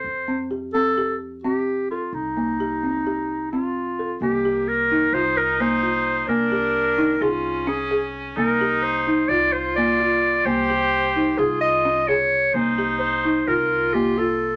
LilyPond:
<<
  \new Staff \with { instrumentName = "Clarinet" } { \time 9/8 \key c \minor \tempo 4. = 86 c''4 r8 a'4 r8 g'4 f'8 | ees'2. f'4. | g'4 bes'4 c''8 bes'8 c''4. | bes'2 f'4 aes'4 r8 |
bes'4 c''4 d''8 c''8 d''4. | c''2 aes'8 ees''4 des''4 | c''4 c''4 bes'4 g'8 a'4 | }
  \new Staff \with { instrumentName = "Marimba" } { \time 9/8 \key c \minor r8 c'8 g'8 c'8 g'4 c'4 a'8 | r8 bes8 g'8 c'8 g'4 c'4 a'8 | bes8 g'4 ees'8 f'4 bes8 f'4 | bes8 g'4 ees'8 aes'4 des'8 aes'4 |
bes8 g'4 ees'8 f'4 bes8 f'4 | bes8 g'4 ees'8 aes'4 des'8 aes'4 | bes8 g'4 ees'8 f'4 bes8 f'4 | }
  \new Staff \with { instrumentName = "Viola" } { \time 9/8 \key c \minor r1 r8 | r1 r8 | bes2 ees'2~ ees'8 | d'2 des'2~ des'8 |
ees'2 f'2~ f'8 | g'2 f'2 r8 | ees'2 f'2~ f'8 | }
  \new Staff \with { instrumentName = "Upright bass" } { \clef bass \time 9/8 \key c \minor f,1~ f,8 | c,1~ c,8 | c,2 c,2~ c,8 | c,2 c,2~ c,8 |
c,2 c,2~ c,8 | c,2 c,2~ c,8 | c,2 c,2~ c,8 | }
>>